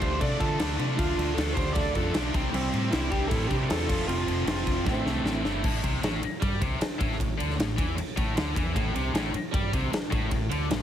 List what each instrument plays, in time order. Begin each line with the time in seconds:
0.00 fingered electric bass D2, distorted electric guitar D3 A3 D4 F4, lead electric guitar G4 C5, kick, crash
0.20 fingered electric bass C3, distorted electric guitar D3 A3 D4, lead electric guitar A4 D5, kick, crash
0.39 distorted electric guitar D3 A3 D4, fingered electric bass D3, lead electric guitar F4 A4, kick, crash
0.59 fingered electric bass D2, distorted electric guitar D3 A3 D4 F4, snare, crash
0.78 fingered electric bass C3, distorted electric guitar D3 A3 D4, crash
0.97 fingered electric bass D2, distorted electric guitar D3 A3 D4 F4, lead electric guitar D4 F4, kick, crash
1.17 fingered electric bass D2, distorted electric guitar D3 A3 D4, crash
1.34 fingered electric bass D2, distorted electric guitar D3 A3, lead electric guitar F4 A4, crash
1.38 distorted electric guitar D4, snare
1.53 distorted electric guitar D3 F4, lead electric guitar G4 C5, kick, crash
1.57 fingered electric bass D2, distorted electric guitar A3 D4
1.73 fingered electric bass D2, distorted electric guitar D3 A3, lead electric guitar A4 D5, kick, crash
1.77 distorted electric guitar D4
1.94 fingered electric bass F2, distorted electric guitar D3 A3 D4, lead electric guitar F4 A4, kick, crash
2.13 fingered electric bass B1, distorted electric guitar D3 A3 D4 F4, snare, crash
2.34 fingered electric bass C2, distorted electric guitar C3 E3 G3 C4 E4, kick, crash
2.52 fingered electric bass C2, distorted electric guitar C3 G3 C4, lead electric guitar G3 C4, crash
2.73 fingered electric bass A2, distorted electric guitar C3 G3 C4, crash
2.91 fingered electric bass C2, distorted electric guitar C3 E3 G3 C4, lead electric guitar C4 E4, snare, crash
2.95 distorted electric guitar E4
3.10 fingered electric bass C2, distorted electric guitar C3 G3 C4, lead electric guitar D4 G4, kick, crash
3.28 fingered electric bass A2, distorted electric guitar C3 G3 C4, lead electric guitar E4 A4, kick, crash
3.48 distorted electric guitar C3 G3 C4 E4, fingered electric bass C3, lead electric guitar D4 G4, kick, crash
3.52 distorted electric guitar E3
3.68 fingered electric bass E2, distorted electric guitar C3 G3 C4, lead electric guitar F4 A4, snare, crash
3.88 fingered electric bass F1, distorted electric guitar F2 C3 F3 A3 C4 F4, kick, crash
4.07 fingered electric bass F1, distorted electric guitar F2 C3 F3, lead electric guitar C4 F4, crash
4.27 fingered electric bass F1, distorted electric guitar F2 C3 F3, crash
4.45 fingered electric bass F1, overdriven electric guitar F2, distorted electric guitar C3 F3 A3 C4, lead electric guitar C4 F4, snare, crash
4.50 distorted electric guitar F4
4.67 fingered electric bass F1, distorted electric guitar F2 C3 F3, kick, crash
4.85 fingered electric bass A1, distorted electric guitar A2 E3 A3 C4 E4, lead electric guitar A3 C4, kick, snare
5.04 fingered electric bass C2, distorted electric guitar A2 E3 A3, snare
5.23 fingered electric bass A1, distorted electric guitar A2 E3 A3, snare
5.43 fingered electric bass G1, distorted electric guitar A2 E3 A3 C4 E4, snare
5.63 fingered electric bass A1, distorted electric guitar A2, kick, crash
5.83 fingered electric bass C2, distorted electric guitar C3, kick, ride
6.02 fingered electric bass A1, distorted electric guitar A2, snare, ride
6.21 muted overdriven electric guitar stroke, muted distorted electric guitar stroke, muted fingered electric bass stroke, ride
6.42 fingered electric bass G2, distorted electric guitar G3, kick, ride
6.61 fingered electric bass C2, distorted electric guitar C3, kick, ride
6.80 muted fingered electric bass stroke, muted distorted electric guitar stroke, muted overdriven electric guitar stroke, snare, ride
6.99 fingered electric bass A1, distorted electric guitar A2, kick, ride
7.12 snare
7.17 fingered electric bass A1, distorted electric guitar A2, kick, ride
7.38 fingered electric bass D2, distorted electric guitar D3, ride
7.50 snare
7.57 fingered electric bass A1, distorted electric guitar A2, snare, ride
7.77 fingered electric bass E2, distorted electric guitar E3, kick, ride
7.96 muted overdriven electric guitar stroke, muted distorted electric guitar stroke, muted fingered electric bass stroke, ride
8.16 fingered electric bass A1, distorted electric guitar A2, kick, ride
8.36 fingered electric bass D2, distorted electric guitar D3, snare, ride
8.56 fingered electric bass E2, distorted electric guitar E3, kick, ride
8.76 fingered electric bass A1, distorted electric guitar A2, kick, ride
8.94 fingered electric bass C2, distorted electric guitar C3, ride
9.14 fingered electric bass A1, distorted electric guitar A2, snare, ride
9.32 muted overdriven electric guitar stroke, muted distorted electric guitar stroke, muted fingered electric bass stroke, ride
9.53 fingered electric bass G2, distorted electric guitar G3, kick, ride
9.73 fingered electric bass C2, distorted electric guitar C3, kick, ride
9.92 muted overdriven electric guitar stroke, muted distorted electric guitar stroke, muted fingered electric bass stroke, snare, ride
10.11 fingered electric bass A1, distorted electric guitar A2, kick, ride
10.31 fingered electric bass A1, distorted electric guitar A2, kick, ride
10.50 fingered electric bass D2, distorted electric guitar D3, ride
10.70 fingered electric bass A1, distorted electric guitar A2, snare, ride